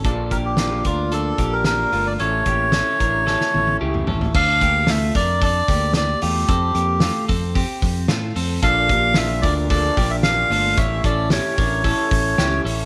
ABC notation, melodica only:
X:1
M:4/4
L:1/16
Q:1/4=112
K:Dm
V:1 name="Melodica"
z2 B G3 F2 A3 B B3 d | ^c12 z4 | f4 e2 d2 d4 d2 G2- | G6 z8 z2 |
f4 e2 d2 d3 e f4 | e2 d2 ^c8- c2 z2 |]